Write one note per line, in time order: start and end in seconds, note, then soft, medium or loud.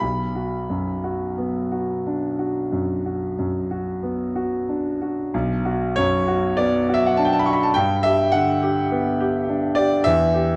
0.00 2.68 B1 soft
0.00 4.00 B5 medium
0.35 0.90 F#4 soft
0.70 1.24 F#2 soft
1.04 1.58 F#4 soft
1.38 1.92 B3 soft
1.72 2.25 F#4 soft
2.07 2.59 D4 soft
2.39 2.92 F#4 soft
2.72 3.25 F#2 soft
3.06 3.57 F#4 soft
3.39 3.89 F#2 soft
3.71 4.21 F#4 soft
4.03 4.54 B3 soft
4.36 4.88 F#4 soft
4.69 5.21 D4 soft
5.01 5.33 F#4 soft
5.34 7.72 B1 medium
5.65 6.15 F#4 soft
5.96 6.46 F#2 medium
5.96 6.57 C#5 medium
6.28 6.76 F#4 medium
6.57 7.06 B3 medium
6.57 6.93 D5 medium
6.89 7.35 F#4 medium
6.94 7.07 E5 medium
7.06 7.17 F#5 medium
7.17 7.64 D4 medium
7.17 7.26 A5 medium
7.25 7.33 G5 medium
7.33 7.40 A5 medium
7.39 7.47 B5 medium
7.46 7.76 F#4 soft
7.46 7.55 C#6 medium
7.53 7.64 B5 medium
7.63 7.74 A5 medium
7.74 10.02 G2 medium
7.74 8.03 G5 medium
8.03 8.51 G4 soft
8.03 8.32 E5 medium
8.32 8.80 D3 soft
8.32 9.76 F#5 medium
8.63 9.09 G4 medium
8.92 9.37 B3 medium
9.20 9.66 G4 medium
9.49 9.94 D4 medium
9.75 10.06 G4 soft
9.75 10.04 D5 medium
10.04 10.56 E2 medium
10.04 10.56 E5 loud
10.34 10.56 G4 soft